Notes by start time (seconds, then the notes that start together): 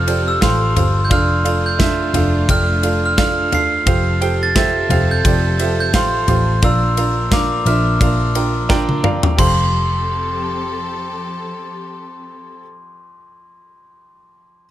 Already playing: F1 F3 C4 F4 G4 A4 C5 F5 F6
0.07 F4 G4 A4 C5 D5, ride
0.28 E6
0.41 A1 F4 G4 A4 C5 F5 C6, kick, snare, ride
0.76 G1 F4 G4 A4 C5 F5, floor tom, ride
1.05 G6
1.10 F1 A3 D4 F4 A4 D5 F5 F6, kick, ride
1.44 D4 F4 A4 D5 F5, ride
1.66 G6
1.79 D4 F4 A4 D5 E5, kick, snare, ride
2.14 F1 D4 F4 A4 D5 F5, floor tom, ride
2.49 F1 D4 F4 A4 D5 G5 F6, kick, ride
2.83 D4 F4 A4 D5 F5, ride
3.06 F6
3.17 D4 F4 A4 D5 F5 F6, kick, snare, ride
3.52 D4 F4 A4 D5 F5 C7, floor tom, ride
3.86 F1 F3 C4 F4 G4 A4 C5 F5, kick, ride
4.21 F4 G4 A4 C5 G5, ride
4.43 A6
4.55 F4 G4 A4 C5 E5 A6, kick, snare, ride
4.90 F1 F4 G4 A4 C5 F5, floor tom, ride
5.11 G6
5.25 F1 F4 G4 A4 C5 D5, kick, ride
5.59 F4 G4 A4 C5 E5, ride
5.80 G6
5.94 A1 F4 G4 A4 C5 F5 C6, kick, snare, ride
6.28 A1 F4 G4 A4 C5 F5, floor tom, ride
6.62 A#1 A#2 A#3 D4 F4 A#4 D5 F5 E6, kick, ride
6.97 D4 F4 A#4 D5 F5, ride
7.31 D4 F4 A#4 D5 F5 D6, kick, snare, ride
7.66 A#1 D4 F4 A#4 D5 E5 F6, ride
8.01 A#1 D4 F4 A#4 D5 F5, kick, ride
8.35 D4 F4 A#4 D5 G5, ride
8.69 D4 F4 A#4 D5 G5, kick, snare
8.89 high tom
9.03 D4 F4 A#4 D5 F5, mid tom
9.23 floor tom
9.36 F1 F2 F3 C4 G4 A4 C5 C6, kick, crash
9.40 F5